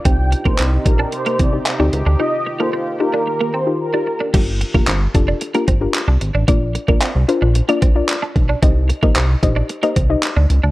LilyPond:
<<
  \new Staff \with { instrumentName = "Supersaw synth" } { \time 4/4 \key g \minor \tempo 4 = 112 g''8 r16 c''16 r8 bes'8 c''8 d''16 r4 r16 | ees''8 r16 c''16 r8 bes'8 bes'8 c''16 r16 bes'8. r16 | r1 | r1 |
r1 | }
  \new Staff \with { instrumentName = "Synth pluck" } { \time 4/4 \key g \minor <c' ees' g'>8 r16 <c' ees' g'>8 r16 <c' ees' g'>8. r8 <c' ees' g'>16 r16 <c' ees' g'>8 r16 | <ees' f' g'>8 r16 <ees' f' a'>8 r16 <ees' f' g'>8. r8 <ees' f' g'>16 r16 <ees' f' g'>8 r16 | <d' f' g' bes'>8 r16 <d' f' g' bes'>8 r16 <d' f' g' a'>8 r16 <d' f' g' bes'>16 r16 <d' f' g' bes'>8. r8 | <d' f' bes' d''>8 r16 <d' f' bes' d''>8 r16 <d' f' bes' c''>8 r16 <d' f' bes' d''>16 r16 <d' f' bes' d''>8. r8 |
<ees' g' c'' ees''>8 r16 <ees' g' c'' ees''>8 r16 <ees' g' c'' ees''>8 r16 <ees' g' c'' ees''>16 r16 <ees' g' c'' ees''>8. r8 | }
  \new Staff \with { instrumentName = "Analog synth pad" } { \time 4/4 \key g \minor << { g'1~ | g'1 | r1 | r1 |
r1 | } \\ { <c c' ees'>1 | <ees bes f'>1 | r1 | r1 |
r1 | } >> }
  \new Staff \with { instrumentName = "Clean electric guitar" } { \time 4/4 \key g \minor c'16 r8 bes16 c'16 r8 d'16 r16 bes16 c'16 r8 d'16 r16 d'16 | ees'16 r8 bes16 c'16 r8 d'16 r16 bes16 c'16 r8 d'16 r16 d'16 | g16 r8 bes16 c'16 r8 d'16 r16 bes16 c'16 r8 d'16 r16 d'16 | bes16 r8 bes16 c'16 r8 d'16 r16 bes16 c'16 r8 d'16 r16 d'16 |
c'16 r8 bes16 c'16 r8 d'16 r16 bes16 c'16 r8 d'16 r16 d'16 | }
  \new Staff \with { instrumentName = "Analog synth bass" } { \clef bass \time 4/4 \key g \minor c,8. bes,,16 c,8 bes,,8 r8 c,8 r16 d,16 cis,16 d,16 | r1 | g,,8. f,,16 g,,8 f,,8 r8 g,,8 r16 c,16 aes,,16 a,,16 | bes,,8. bes,,16 r16 c,16 r16 bes,,8 r16 bes,,8 r8 b,,8 |
c,8. bes,,16 c,8 bes,,8 r8 c,8 r16 d,16 cis,16 d,16 | }
  \new DrumStaff \with { instrumentName = "Drums" } \drummode { \time 4/4 <hh bd>8 hh16 bd16 <hc hh>8 <hh bd>8 hh16 hh16 <hh bd>8 <hc hh>8 hh8 | r4 r4 r4 r4 | <cymc hh bd>8 hh16 bd16 <hc hh>8 <hh bd>8 hh16 hh16 <hh bd>8 <hc hh>8 hh8 | <hh bd>8 hh16 bd16 <hc hh>8 hh8 hh16 hh16 <hh bd>8 <hc hh>8 <hh bd>8 |
<hh bd>8 hh16 bd16 <hc hh>8 <hh bd>8 hh16 hh16 <hh bd>8 <hc hh>8 hh8 | }
>>